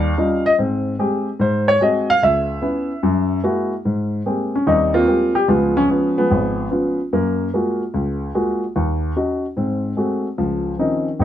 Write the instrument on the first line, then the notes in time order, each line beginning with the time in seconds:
grand piano
Already playing: D#2 G3 F5
0.17 G3 C#4 D#4 F4
0.46 D#5
0.59 G#2 C4
0.99 G#3 C4 G4
1.39 G#2 C5
1.68 C#5
1.81 G#3 C4 F#4 D#5
2.10 F5
2.22 C#2 E5
2.62 B3 C#4 E4
3.03 F#2
3.43 G#3 A#3 E4 F#4
3.85 G#2
4.26 G#3 A#3 C4 G4
4.55 C#4
4.67 D#2 G3 C4 D#4
4.94 A#3 C4 F4
5.07 G#3 A#3 C4 G4
5.35 G4
5.48 C#2 F3 G#3 B3 F4
5.77 F3 G#3 C#4
5.90 B3 C#4 F4
6.18 F3 G#3 B3
6.31 G#1
6.71 B3 C#4 F4
7.13 F#2 A#3
7.54 G#3 A#3 F4 F#4
7.94 C#2
8.35 G#3 A#3 F4 F#4
8.76 D#2
9.16 C#4 D#4 F#4
9.57 G#2 C4
9.97 G#3 A3 C4 F#4
10.38 C#2 F3
10.78 D#3 F3 C4 C#4 D#4
11.19 G#1 C4